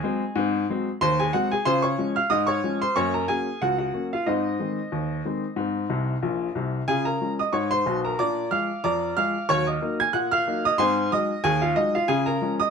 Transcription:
0.00 0.21 F#3 medium
0.00 0.21 G#3 medium
0.00 0.22 C4 medium
0.00 0.97 G#4 medium
0.00 0.96 D#5 medium
0.00 0.61 G#5 loud
0.36 0.63 G#2 loud
0.36 0.55 C4 medium
0.70 0.87 F#3 medium
0.70 0.87 G#3 medium
0.70 0.88 C4 medium
1.01 1.29 D#2 medium
1.01 1.18 C5 medium
1.01 1.19 C6 loud
1.19 1.33 G#4 medium
1.19 1.34 G#5 loud
1.33 1.51 F#3 medium
1.33 1.51 G#3 medium
1.33 1.52 C4 medium
1.33 1.50 F#4 medium
1.33 1.51 F#5 loud
1.51 1.66 G#4 medium
1.51 1.66 G#5 loud
1.65 1.93 C#3 loud
1.65 1.85 F4 medium
1.65 1.83 C5 loud
1.65 1.83 C6 loud
1.82 2.14 C#5 medium
1.82 2.14 C#6 loud
1.98 2.16 F3 medium
1.98 2.16 G#3 medium
1.98 2.16 C#4 medium
2.16 2.30 F5 medium
2.16 2.31 F6 loud
2.30 2.58 G#2 medium
2.30 2.47 D#5 medium
2.30 2.48 D#6 loud
2.47 2.78 C#5 medium
2.47 2.78 C#6 loud
2.64 2.81 F3 medium
2.64 2.82 G#3 medium
2.64 2.82 C#4 medium
2.82 2.96 C5 medium
2.82 2.96 C6 loud
2.96 3.24 F#2 loud
2.96 3.16 A#3 medium
2.96 3.13 C#5 medium
2.96 3.13 C#6 loud
3.14 3.28 A#4 medium
3.14 3.29 A#5 medium
3.28 3.47 F#3 medium
3.28 3.47 A#3 soft
3.28 3.47 C#4 medium
3.28 3.59 G#4 medium
3.28 3.59 G#5 loud
3.62 3.89 C#2 medium
3.62 3.78 F#4 medium
3.62 3.77 F#5 loud
3.78 4.10 F#4 medium
3.78 4.05 F#5 medium
3.94 4.12 F#3 medium
3.94 4.12 A#3 soft
3.94 4.12 C#4 soft
4.13 4.27 F4 medium
4.13 4.27 F5 medium
4.26 4.55 G#2 medium
4.26 4.46 C4 medium
4.26 6.52 D#4 medium
4.26 6.52 C5 medium
4.26 6.52 D#5 medium
4.60 4.77 D#3 soft
4.60 4.78 G#3 soft
4.60 4.78 C4 medium
4.92 5.20 D#2 medium
5.25 5.43 D#3 medium
5.25 5.43 G#3 soft
5.25 5.44 C4 medium
5.56 5.85 G#2 medium
5.56 5.76 C4 medium
5.90 6.14 C2 medium
5.90 6.14 C3 medium
6.22 6.47 A#1 medium
6.22 6.47 A#2 medium
6.55 6.80 C2 medium
6.55 6.80 C3 medium
6.88 7.16 C#3 medium
6.88 7.08 F4 medium
6.88 7.05 G#4 medium
6.88 7.06 G#5 loud
7.05 7.37 A#4 medium
7.05 7.32 A#5 medium
7.21 7.39 F3 soft
7.21 7.39 G#3 soft
7.21 7.40 C#4 soft
7.39 7.53 D#5 medium
7.39 7.54 D#6 medium
7.53 7.81 G#2 medium
7.53 7.70 C#5 medium
7.53 7.71 C#6 medium
7.71 8.02 C5 medium
7.71 7.97 C6 loud
7.86 8.12 B1 medium
7.86 8.12 B2 medium
8.05 8.19 A#4 medium
8.05 8.18 A#5 medium
8.19 8.47 A#2 medium
8.19 8.39 D4 medium
8.19 8.50 D5 medium
8.19 8.50 A#5 medium
8.19 8.45 D6 loud
8.51 8.69 F3 soft
8.51 8.69 G#3 soft
8.51 8.70 F4 soft
8.51 8.82 F5 medium
8.51 8.82 F6 loud
8.84 9.12 F2 medium
8.84 9.15 D5 medium
8.84 9.15 A#5 medium
8.84 9.10 D6 loud
9.17 9.35 F3 medium
9.17 9.35 G#3 medium
9.17 9.35 F4 medium
9.17 9.48 F5 medium
9.17 9.43 F6 loud
9.49 9.77 D#2 medium
9.49 9.69 F#3 medium
9.49 9.66 C#5 loud
9.49 9.67 C#6 loud
9.67 9.98 D#5 medium
9.67 9.93 D#6 medium
9.81 9.99 F#3 medium
9.81 10.00 A#3 medium
9.81 10.00 D#4 medium
10.00 10.14 G#5 medium
10.00 10.14 G#6 loud
10.13 10.41 A#2 medium
10.13 10.31 F#5 medium
10.13 10.31 F#6 loud
10.31 10.63 F5 medium
10.31 10.63 F6 loud
10.47 10.65 F#3 medium
10.47 10.65 A#3 medium
10.47 10.65 D#4 medium
10.65 10.79 D#5 medium
10.65 10.80 D#6 loud
10.78 11.07 G#2 loud
10.78 10.98 C4 medium
10.78 11.10 C5 medium
10.78 11.10 G#5 medium
10.78 11.10 C6 loud
11.12 11.30 F#3 medium
11.12 11.30 G#3 medium
11.12 11.31 D#4 medium
11.12 11.43 D#5 medium
11.12 11.43 D#6 loud
11.44 11.72 D#2 loud
11.44 11.61 G#4 medium
11.44 11.62 G#5 loud
11.62 11.76 F4 medium
11.62 11.77 F5 loud
11.76 11.94 F#3 medium
11.76 11.95 G#3 medium
11.76 11.94 D#4 medium
11.76 11.94 D#5 loud
11.95 12.09 F4 medium
11.95 12.10 F5 loud
12.08 12.36 C#3 loud
12.08 12.28 F4 medium
12.08 12.26 G#4 medium
12.08 12.26 G#5 loud
12.26 12.57 A#4 medium
12.26 12.52 A#5 loud
12.41 12.59 F3 medium
12.41 12.60 G#3 medium
12.41 12.60 C#4 medium
12.60 12.70 D#5 medium
12.60 12.70 D#6 loud

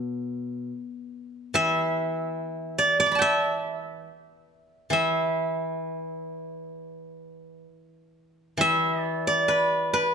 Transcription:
0.00 0.70 B2 soft
0.00 0.16 A4 medium
1.54 4.06 E3 soft
1.54 3.21 E5 loud
2.78 2.99 D5 medium
3.00 4.85 D5 medium
3.06 4.28 D6 soft
3.12 4.60 A5 soft
3.12 4.47 B5 soft
3.19 4.92 E5 medium
3.19 4.74 G5 soft
4.90 7.64 E3 medium
4.90 7.62 E5 medium
8.57 10.14 E3 soft
8.57 9.02 E5 medium
9.02 9.27 D5 medium
9.27 10.14 D5 medium
9.48 9.93 B4 medium
9.93 10.14 B4 medium

